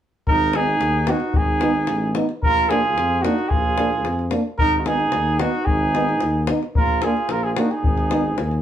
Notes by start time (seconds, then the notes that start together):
0.27 G#1 D#4 A#4, davul low
0.53 B3 D#4 G#4, davul high
0.68 davul high
0.81 D#2, davul high
1.07 B3 D#4 F#4, davul high
1.20 davul high
1.34 G#1 G#4, davul low
1.38 D#4
1.61 B3 D#4, davul high
1.75 davul high
1.87 A1, davul high
2.15 B3 D#4, davul high
2.29 davul high
2.42 A#1 F4 A#4, davul low
2.69 A#3 D4 F4 G#4, davul high
2.85 davul high
2.96 F2, davul high
3.22 A#3 D4 D#4 F#4, davul high
3.39 davul high
3.49 A#1 F4 G#4, davul low
3.78 A#3 D4, davul high
3.93 davul high
4.04 F2, davul high
4.19 davul high
4.31 A#3 D4, davul high
4.58 G#1 D#4 A#4, davul low
4.78 F#4 A#4
4.86 B3 D#4 G#4, davul high
5.00 davul high
5.12 D#2, davul high
5.39 B3 D#4 F#4, davul high
5.55 davul high
5.65 G#1 D#4 G#4, davul low
5.95 B3 D#4, davul high
6.09 davul high
6.21 D#2, davul high
6.47 B3 D#4, davul high
6.63 davul high
6.75 A#1 F4 A#4, davul low
7.02 A#3 D4 F4 G#4, davul high
7.17 davul high
7.29 A#1 F4 A#4, davul high
7.44 F4 G#4
7.52 F4 G#4
7.56 A#3 D4 D#4 F#4, davul high
7.70 D#4 G#4, davul high
7.83 G#1, davul low
7.98 davul high
8.11 B3 D#4, davul high
8.38 D#2, davul high
8.51 davul high